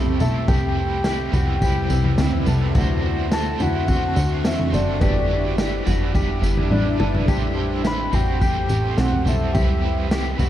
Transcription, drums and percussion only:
0.06 floor tom medium
0.20 floor tom medium
0.20 tambourine medium
0.48 kick loud
0.48 floor tom loud
0.48 tambourine medium
1.04 snare loud
1.04 tambourine medium
1.34 floor tom medium
1.34 tambourine medium
1.62 kick medium
1.62 floor tom medium
1.62 tambourine medium
1.90 tambourine medium
2.04 floor tom medium
2.18 snare medium
2.18 tambourine loud
2.32 floor tom medium
2.47 floor tom medium
2.47 tambourine medium
2.75 kick loud
2.75 floor tom loud
2.75 tambourine medium
3.32 snare loud
3.32 tambourine medium
3.60 floor tom medium
3.60 tambourine medium
3.88 kick medium
3.88 floor tom medium
3.88 tambourine medium
4.16 tambourine medium
4.45 snare loud
4.45 tambourine medium
4.60 floor tom medium
4.74 floor tom medium
4.74 tambourine medium
5.01 kick loud
5.01 floor tom loud
5.01 tambourine medium
5.58 snare loud
5.58 tambourine loud
5.87 floor tom medium
5.87 tambourine medium
6.15 kick medium
6.15 floor tom medium
6.15 tambourine medium
6.44 tambourine medium
6.57 floor tom medium
6.72 high tom medium
7.00 mid tom loud
7.15 floor tom loud
7.28 kick loud
7.28 floor tom loud
7.28 tambourine medium
7.85 snare loud
7.85 tambourine medium
8.13 floor tom medium
8.13 tambourine medium
8.41 kick medium
8.41 floor tom medium
8.41 tambourine medium
8.69 tambourine medium
8.98 snare loud
8.98 tambourine medium
9.12 floor tom medium
9.27 floor tom medium
9.27 tambourine medium
9.55 kick loud
9.55 floor tom loud
9.55 tambourine medium
10.11 snare loud
10.11 tambourine medium
10.39 floor tom medium
10.39 tambourine medium

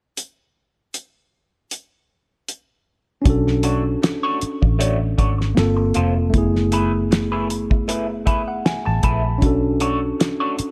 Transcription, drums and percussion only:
0.17 closed hi-hat medium
0.94 closed hi-hat soft
1.71 closed hi-hat medium
2.48 closed hi-hat medium
3.25 kick medium
3.25 closed hi-hat medium
3.47 snare soft
3.63 closed hi-hat medium
4.03 snare loud
4.03 closed hi-hat medium
4.41 closed hi-hat medium
4.63 kick medium
4.81 closed hi-hat medium
5.18 kick medium
5.18 closed hi-hat medium
5.41 snare soft
5.57 snare loud
5.57 closed hi-hat medium
5.94 closed hi-hat medium
6.34 kick loud
6.34 closed hi-hat medium
6.56 snare soft
6.72 closed hi-hat medium
7.12 snare loud
7.12 closed hi-hat medium
7.50 closed hi-hat medium
7.71 kick medium
7.89 closed hi-hat medium
8.27 kick medium
8.27 closed hi-hat medium
8.66 snare loud
8.66 closed hi-hat medium
9.03 kick medium
9.03 closed hi-hat medium
9.42 kick loud
9.42 closed hi-hat medium
9.80 closed hi-hat medium
10.21 snare loud
10.21 closed hi-hat medium
10.59 closed hi-hat medium

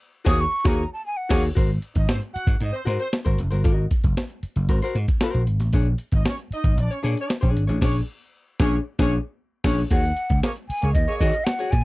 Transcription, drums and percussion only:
0.26 kick loud
0.26 snare loud
0.65 kick loud
0.65 snare loud
1.30 kick loud
1.30 snare loud
1.30 crash loud
1.57 kick loud
1.57 closed hi-hat medium
1.82 closed hi-hat medium
1.95 kick medium
1.95 closed hi-hat medium
2.09 snare loud
2.09 closed hi-hat medium
2.22 closed hi-hat soft
2.36 closed hi-hat medium
2.47 kick loud
2.47 closed hi-hat medium
2.60 closed hi-hat medium
2.74 closed hi-hat soft
2.87 closed hi-hat medium
3.00 closed hi-hat soft
3.13 snare loud
3.13 closed hi-hat loud
3.26 kick medium
3.26 closed hi-hat soft
3.38 closed hi-hat medium
3.52 snare soft
3.52 closed hi-hat soft
3.64 kick loud
3.64 closed hi-hat medium
3.91 kick medium
3.91 closed hi-hat medium
4.04 kick medium
4.04 closed hi-hat soft
4.17 snare loud
4.17 closed hi-hat medium
4.30 closed hi-hat soft
4.43 closed hi-hat medium
4.56 closed hi-hat medium
4.69 kick medium
4.69 closed hi-hat medium
4.82 closed hi-hat soft
4.95 closed hi-hat medium
5.08 kick medium
5.08 closed hi-hat medium
5.21 snare loud
5.21 closed hi-hat medium
5.34 closed hi-hat soft
5.47 closed hi-hat medium
5.60 snare soft
5.60 closed hi-hat medium
5.73 kick loud
5.73 closed hi-hat medium
5.98 closed hi-hat medium
6.12 kick medium
6.12 closed hi-hat soft
6.26 snare loud
6.26 closed hi-hat medium
6.39 closed hi-hat soft
6.52 closed hi-hat medium
6.64 kick loud
6.64 closed hi-hat medium
6.78 closed hi-hat medium
6.92 closed hi-hat soft
7.05 closed hi-hat medium
7.17 closed hi-hat medium
7.30 snare loud
7.30 closed hi-hat loud
7.43 kick medium
7.43 closed hi-hat soft
7.57 closed hi-hat medium
7.69 snare soft
7.69 closed hi-hat soft
7.82 kick loud
7.82 snare loud
7.82 crash medium
8.60 kick loud
8.60 snare loud
8.99 kick loud
8.99 snare loud
9.64 kick loud
9.64 snare loud
9.64 crash medium
9.91 kick loud
9.91 closed hi-hat loud
10.05 closed hi-hat soft
10.17 closed hi-hat medium
10.30 kick medium
10.30 closed hi-hat soft
10.43 snare loud
10.43 closed hi-hat loud
10.56 closed hi-hat soft
10.70 open hi-hat medium
10.82 closed hi-hat medium
10.95 kick medium
10.95 closed hi-hat medium
11.09 closed hi-hat soft
11.21 kick medium
11.21 closed hi-hat medium
11.34 closed hi-hat medium
11.47 snare loud
11.47 closed hi-hat medium
11.60 closed hi-hat soft
11.72 kick medium
11.72 closed hi-hat medium

